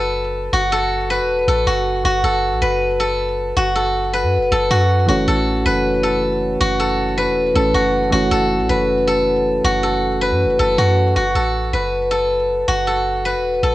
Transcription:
0.00 0.49 F#1 loud
0.00 0.53 F#4 medium
0.00 0.72 A4 medium
0.00 1.10 B4 medium
0.53 1.21 F#1 loud
0.53 1.67 F#4 medium
0.72 1.48 A4 medium
1.10 2.61 B4 medium
1.19 1.46 E1 loud
1.48 1.66 A1 loud
1.48 2.24 A4 medium
1.67 2.03 F#1 loud
1.67 2.05 F#4 medium
2.05 2.23 F#1 loud
2.05 3.56 F#4 medium
2.24 2.54 F#1 loud
2.24 2.99 A4 medium
2.52 2.61 A1 loud
2.62 3.53 F#1 loud
2.62 4.13 B4 medium
3.00 3.75 A4 medium
3.57 4.25 F#1 loud
3.57 4.70 F#4 medium
3.76 4.51 A4 medium
4.14 5.65 B4 medium
4.23 4.39 F#2 loud
4.37 4.51 F#1 loud
4.52 4.70 F#1 loud
4.52 5.27 A4 medium
4.71 5.07 F#2 loud
4.71 5.08 F#4 medium
5.06 5.27 F#1 loud
5.06 7.50 E3 medium
5.06 7.51 A3 medium
5.06 7.52 C#4 medium
5.06 6.60 F#4 medium
5.11 7.52 F#4 medium
5.28 5.64 A1 loud
5.28 6.03 A4 medium
5.66 6.57 F#1 loud
5.66 7.17 B4 medium
6.03 6.79 A4 medium
6.60 7.28 F#1 loud
6.60 7.74 F#4 loud
6.80 7.55 A4 medium
7.18 8.69 B4 medium
7.27 7.54 E1 loud
7.54 7.74 A1 loud
7.54 8.09 E3 medium
7.54 8.11 A3 soft
7.54 8.12 C#4 soft
7.54 8.31 A4 medium
7.54 8.13 A4 medium
7.74 8.11 F#1 loud
7.74 8.12 F#4 medium
8.10 8.31 F#1 loud
8.10 11.11 E3 medium
8.10 11.12 A3 medium
8.10 11.13 C#4 medium
8.10 9.64 F#4 medium
8.15 11.13 F#4 medium
8.31 8.61 F#1 loud
8.31 9.07 A4 medium
8.60 8.69 A1 loud
8.69 9.60 F#1 loud
8.69 10.21 B4 medium
9.07 9.83 A4 medium
9.64 10.32 F#1 loud
9.64 10.78 F#4 medium
9.83 10.59 A4 medium
10.21 11.73 B4 medium
10.31 10.46 F#2 loud
10.45 10.59 F#1 loud
10.59 10.77 F#1 loud
10.59 11.35 A4 medium
10.78 11.15 F#2 loud
10.78 11.16 F#4 medium
11.16 11.34 F#1 loud
11.16 12.68 F#4 medium
11.35 11.72 A1 loud
11.35 12.11 A4 medium
11.73 12.64 F#1 loud
11.73 13.25 B4 medium
12.11 12.87 A4 medium
12.68 13.36 F#1 loud
12.68 13.75 F#4 medium
12.87 13.63 A4 medium
13.25 13.75 B4 medium
13.34 13.62 E1 loud
13.63 13.75 A1 loud
13.63 13.75 A4 medium

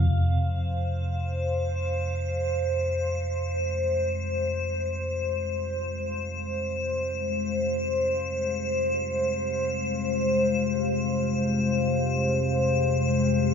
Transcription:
0.00 0.11 F5 medium
0.08 13.54 F2 medium
0.08 13.54 C3 medium
0.08 13.54 G#3 medium
0.08 13.54 C5 medium
0.42 13.54 G4 medium
1.89 13.54 F5 medium

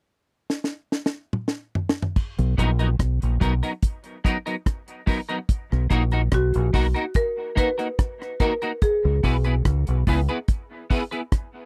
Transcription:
0.50 snare medium
0.64 snare medium
0.92 snare medium
1.06 snare medium
1.33 mid tom medium
1.48 snare medium
1.75 floor tom medium
1.89 snare loud
2.02 floor tom medium
2.16 kick loud
2.16 crash medium
2.39 2.56 B1 loud
2.39 closed hi-hat medium
2.57 2.95 A#1 medium
2.57 2.69 F#3 medium
2.57 2.69 B3 medium
2.57 2.70 D#4 medium
2.57 2.70 A#4 medium
2.57 kick medium
2.57 closed hi-hat medium
2.79 2.88 F#3 soft
2.79 2.88 B3 medium
2.79 2.88 D#4 medium
2.79 2.88 A#4 medium
2.79 closed hi-hat soft
2.99 3.19 B1 medium
2.99 kick loud
2.99 cross-stick loud
2.99 closed hi-hat medium
3.22 3.40 A#1 medium
3.22 closed hi-hat medium
3.40 3.61 B1 medium
3.40 3.52 F#3 medium
3.40 3.52 B3 medium
3.40 3.53 D#4 medium
3.40 3.53 A#4 loud
3.40 kick loud
3.40 closed hi-hat medium
3.63 3.72 F#3 medium
3.63 3.72 B3 medium
3.63 3.71 D#4 medium
3.63 3.71 A#4 medium
3.63 closed hi-hat medium
3.82 kick medium
3.82 closed hi-hat medium
4.04 closed hi-hat soft
4.24 4.36 F#3 medium
4.24 4.36 B3 medium
4.24 4.36 D#4 medium
4.24 4.37 A#4 medium
4.24 kick medium
4.24 closed hi-hat medium
4.46 4.55 F#3 medium
4.46 4.55 B3 medium
4.46 4.54 D#4 medium
4.46 4.54 A#4 medium
4.46 closed hi-hat medium
4.66 kick loud
4.66 cross-stick loud
4.66 closed hi-hat medium
4.88 closed hi-hat soft
5.06 5.18 F#3 medium
5.06 5.19 B3 medium
5.06 5.19 D#4 medium
5.06 5.19 A#4 medium
5.06 kick medium
5.06 open hi-hat medium
5.29 5.38 F#3 soft
5.29 5.38 B3 medium
5.29 5.37 D#4 medium
5.29 5.37 A#4 medium
5.29 closed hi-hat soft
5.49 kick loud
5.49 closed hi-hat medium
5.72 5.89 B1 medium
5.72 cross-stick medium
5.90 6.28 A#1 medium
5.90 6.02 A#3 medium
5.90 6.02 D#4 medium
5.90 6.02 F#4 medium
5.90 6.03 A#4 medium
5.90 kick medium
5.90 closed hi-hat medium
6.11 6.21 A#3 soft
6.11 6.21 D#4 medium
6.11 6.21 F#4 medium
6.11 6.20 A#4 medium
6.11 closed hi-hat soft
6.32 6.52 B1 medium
6.32 7.19 F#4 medium
6.32 kick loud
6.32 cross-stick loud
6.32 closed hi-hat medium
6.54 6.72 A#1 medium
6.54 closed hi-hat medium
6.73 6.93 B1 medium
6.73 6.85 A#3 medium
6.73 6.85 D#4 medium
6.73 6.86 F#4 medium
6.73 6.86 A#4 loud
6.73 kick loud
6.73 open hi-hat medium
6.94 7.04 A#3 medium
6.94 7.04 D#4 medium
6.94 7.04 F#4 medium
6.94 7.03 A#4 medium
6.94 closed hi-hat medium
7.14 7.54 A#4 loud
7.14 kick loud
7.14 closed hi-hat medium
7.55 7.68 A#3 medium
7.55 7.68 D#4 medium
7.55 7.69 F#4 medium
7.55 7.69 A#4 medium
7.55 8.43 B4 medium
7.55 kick medium
7.55 closed hi-hat medium
7.78 7.88 A#3 soft
7.78 7.87 D#4 soft
7.78 7.87 F#4 medium
7.78 7.87 A#4 medium
7.78 closed hi-hat medium
7.99 kick loud
7.99 cross-stick loud
7.99 closed hi-hat medium
8.22 cross-stick medium
8.40 8.52 A#3 medium
8.40 8.52 D#4 medium
8.40 8.52 F#4 medium
8.40 8.83 A#4 medium
8.40 8.53 A#4 loud
8.40 kick medium
8.40 closed hi-hat medium
8.62 8.71 A#3 medium
8.62 8.71 D#4 medium
8.62 8.71 F#4 medium
8.62 8.70 A#4 medium
8.62 closed hi-hat soft
8.82 11.65 G#4 medium
8.82 kick loud
8.82 closed hi-hat medium
9.05 9.22 C#2 medium
9.23 9.61 B1 medium
9.23 9.35 B3 medium
9.23 9.35 E4 medium
9.23 9.36 G#4 medium
9.23 9.36 B4 medium
9.23 kick medium
9.23 open hi-hat soft
9.44 9.54 B3 soft
9.44 9.54 E4 soft
9.44 9.54 G#4 medium
9.44 9.53 B4 medium
9.44 closed hi-hat soft
9.65 9.85 C#2 medium
9.65 kick loud
9.65 cross-stick loud
9.65 closed hi-hat medium
9.87 10.05 B1 medium
9.87 closed hi-hat medium
10.07 10.27 C#2 medium
10.07 10.19 B3 medium
10.07 10.19 E4 medium
10.07 10.19 G#4 medium
10.07 10.19 B4 medium
10.07 kick medium
10.07 open hi-hat medium
10.29 10.38 B3 medium
10.29 10.38 E4 medium
10.29 10.37 G#4 medium
10.29 10.37 B4 medium
10.29 closed hi-hat medium
10.48 kick loud
10.48 closed hi-hat medium
10.90 11.02 B3 medium
10.90 11.02 E4 medium
10.90 11.02 G#4 loud
10.90 11.03 B4 loud
10.90 kick medium
10.90 open hi-hat medium
11.11 11.21 B3 soft
11.11 11.21 E4 soft
11.11 11.20 G#4 soft
11.11 11.20 B4 medium
11.11 closed hi-hat medium
11.32 kick loud
11.32 cross-stick medium
11.32 closed hi-hat medium

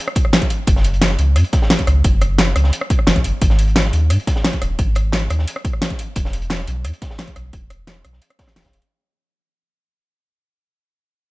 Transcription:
0.08 cross-stick medium
0.15 kick loud
0.15 closed hi-hat medium
0.25 cross-stick soft
0.33 snare loud
0.33 closed hi-hat medium
0.42 kick medium
0.42 closed hi-hat soft
0.50 closed hi-hat medium
0.67 1.18 F#1 medium
0.67 kick loud
0.67 closed hi-hat medium
0.76 snare soft
0.84 closed hi-hat medium
0.94 closed hi-hat soft
1.02 snare loud
1.02 closed hi-hat medium
1.10 snare soft
1.19 1.37 C#2 medium
1.19 closed hi-hat medium
1.36 1.44 F#2 medium
1.36 cross-stick soft
1.36 closed hi-hat medium
1.44 closed hi-hat soft
1.53 kick loud
1.53 snare soft
1.53 closed hi-hat medium
1.62 snare medium
1.70 snare loud
1.70 closed hi-hat medium
1.79 kick medium
1.79 closed hi-hat soft
1.87 2.03 C#2 medium
1.87 cross-stick medium
1.87 closed hi-hat medium
2.04 2.55 F#1 loud
2.04 kick loud
2.04 closed hi-hat medium
2.21 cross-stick soft
2.21 closed hi-hat medium
2.38 snare loud
2.38 closed hi-hat medium
2.56 2.71 C#2 medium
2.56 cross-stick medium
2.56 closed hi-hat medium
2.64 snare medium
2.73 closed hi-hat medium
2.81 cross-stick medium
2.90 kick loud
2.90 closed hi-hat medium
2.99 cross-stick soft
3.07 3.15 F#1 medium
3.07 snare loud
3.07 closed hi-hat medium
3.16 3.24 A#1 medium
3.16 kick medium
3.16 closed hi-hat soft
3.24 3.32 F#1 medium
3.24 closed hi-hat medium
3.42 3.92 G#1 loud
3.42 kick loud
3.42 closed hi-hat medium
3.50 snare soft
3.59 closed hi-hat medium
3.68 closed hi-hat soft
3.76 snare loud
3.76 closed hi-hat medium
3.85 snare soft
3.93 4.12 D#2 medium
3.93 closed hi-hat medium
4.10 4.18 G#2 medium
4.10 cross-stick soft
4.10 closed hi-hat medium
4.20 closed hi-hat soft
4.27 kick loud
4.27 snare soft
4.27 closed hi-hat medium
4.36 snare soft
4.44 snare loud
4.44 closed hi-hat medium
4.53 kick medium
4.53 closed hi-hat soft
4.62 4.77 D#1 medium
4.62 cross-stick soft
4.62 closed hi-hat medium
4.79 5.29 G#1 loud
4.79 kick loud
4.79 closed hi-hat medium
4.95 cross-stick soft
4.95 closed hi-hat medium
5.12 snare loud
5.12 closed hi-hat medium
5.30 5.46 D#2 medium
5.30 cross-stick medium
5.30 closed hi-hat medium
5.39 snare soft
5.48 closed hi-hat medium
5.48 closed hi-hat loud
5.56 cross-stick medium
5.65 kick loud
5.65 closed hi-hat medium
5.73 cross-stick soft
5.82 snare loud
5.82 closed hi-hat medium
5.90 kick medium
5.90 closed hi-hat soft
5.99 closed hi-hat medium
6.16 6.66 E1 loud
6.16 kick loud
6.16 closed hi-hat medium
6.16 closed hi-hat loud
6.25 snare medium
6.33 closed hi-hat medium
6.42 closed hi-hat soft
6.50 snare loud
6.50 closed hi-hat loud
6.50 closed hi-hat medium
6.59 snare soft
6.67 6.86 B1 medium
6.67 closed hi-hat medium
6.84 6.92 E2 medium
6.84 cross-stick soft
6.84 closed hi-hat medium
6.84 closed hi-hat loud
6.93 closed hi-hat soft
7.02 kick loud
7.02 snare soft
7.02 closed hi-hat medium
7.10 snare medium
7.18 snare loud
7.18 closed hi-hat medium
7.27 kick medium
7.27 closed hi-hat soft
7.36 7.51 B1 medium
7.36 cross-stick soft
7.36 closed hi-hat medium
7.53 8.03 E1 loud
7.53 kick loud
7.53 closed hi-hat medium
7.70 cross-stick soft
7.70 closed hi-hat medium
7.87 snare loud
7.87 closed hi-hat medium
7.87 closed hi-hat loud
8.04 8.20 B1 medium
8.04 cross-stick medium
8.04 closed hi-hat medium
8.13 snare soft
8.22 closed hi-hat medium
8.22 closed hi-hat loud
8.30 cross-stick medium
8.30 closed hi-hat soft
8.39 kick loud
8.39 snare loud
8.39 closed hi-hat medium
8.48 cross-stick soft
8.48 snare soft
8.56 8.64 E1 medium
8.56 snare loud
8.56 snare medium
8.56 closed hi-hat medium
8.60 snare medium
8.60 closed hi-hat medium
8.64 8.72 G#1 medium
8.64 kick medium
8.64 snare loud
8.64 closed hi-hat medium
8.64 closed hi-hat soft
8.73 8.81 E1 medium
8.73 closed hi-hat medium
8.82 closed hi-hat soft

